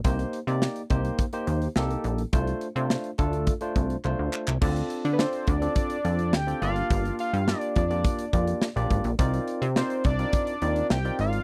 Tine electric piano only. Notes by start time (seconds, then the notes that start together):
0.04 A#3 D#4 G4 C5
0.47 A#3 D#4 G4 D5
0.90 A#3 D#4 G4 C5
1.33 A#3 D#4 G4 C5
1.76 A#3 D#4 G4 A4
2.33 A3 D4 F4 C5
2.76 A3 D4 F4 C5
3.18 A3 D4 F4 A4
3.61 A3 D4 F4 C5
4.04 A3 D4 F4 C5
4.61 C4 D4 F4 A4 D5
5.19 C4 D4 F4 A4 D5
5.61 C4 D4 F4 A4 D5
6.04 C4 D4 F4 A4 D5
6.47 C4 D4 F4 A4 D5
6.61 A#3 D4 F4 G4 D5
7.47 A#3 D4 F4 G4 D5
7.90 A#3 D4 F4 G4 D5
8.33 A#3 D4 F4 G4 D5
8.76 A#3 D4 F4 G4 D5
9.19 C4 D#4 F4 A#4 D5
9.76 C4 D#4 F4 A#4 D5
10.19 C4 D#4 F4 A#4 D5
10.62 C4 D#4 F4 A#4 D5
11.05 C4 D#4 F4 A#4 D5